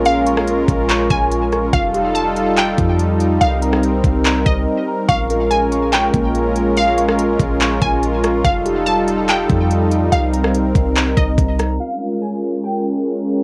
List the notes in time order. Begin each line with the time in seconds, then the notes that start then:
Already playing: A#1 G#3 A#3 C#4 F4 A#4 C#6
0.05 F5, closed hi-hat
0.26 C#6, closed hi-hat
0.37 cross-stick
0.48 closed hi-hat
0.68 A#1, kick, closed hi-hat
0.89 C#6, clap, closed hi-hat
1.10 A#1 G#5, kick, closed hi-hat
1.31 closed hi-hat
1.52 C#6, cross-stick, closed hi-hat
1.73 F1 G3 D#4 F4 A4 F5, kick, closed hi-hat
1.94 G4, closed hi-hat
2.15 A5, closed hi-hat
2.36 F5, closed hi-hat
2.57 G5, clap, closed hi-hat
2.78 F2 F3, kick, closed hi-hat
2.99 closed hi-hat
3.20 closed hi-hat
3.41 C2 C4 A#4 F5, closed hi-hat
3.62 A#5, closed hi-hat
3.73 cross-stick
3.83 closed hi-hat
4.04 C2, kick, closed hi-hat
4.25 A#5, clap, closed hi-hat
4.46 C2 D#5, kick, closed hi-hat
4.88 A#5
5.08 A#1 G#3 C#4 F4 F5 C#6, kick, closed hi-hat
5.30 A#4, closed hi-hat
5.51 G#5, closed hi-hat
5.72 C#6, closed hi-hat
5.93 G5, clap, closed hi-hat
6.13 A#1 A#3, kick, closed hi-hat
6.35 closed hi-hat
6.56 closed hi-hat
6.77 F5, closed hi-hat
6.98 C#6, closed hi-hat
7.09 cross-stick
7.19 closed hi-hat
7.40 A#1, kick, closed hi-hat
7.61 C#6, clap, closed hi-hat
7.82 A#1 G#5, kick, closed hi-hat
8.03 closed hi-hat
8.23 C#6, cross-stick, closed hi-hat
8.45 F1 G3 D#4 A4 F5, kick, closed hi-hat
8.66 G4, closed hi-hat
8.86 A5, closed hi-hat
9.08 F5, closed hi-hat
9.28 G5, clap, closed hi-hat
9.49 F2 F3, kick, closed hi-hat
9.71 closed hi-hat
9.91 closed hi-hat
10.12 C2 C4 A#4 F5, closed hi-hat
10.33 A#5, closed hi-hat
10.44 cross-stick
10.55 closed hi-hat
10.75 C2, kick, closed hi-hat
10.96 A#5, clap, closed hi-hat
11.17 C2 D#5, kick, closed hi-hat
11.38 C2, kick, closed hi-hat
11.59 A#5, cross-stick, closed hi-hat
11.80 G#3 C#4 F4 A#4 F5
12.22 G#5
12.64 G5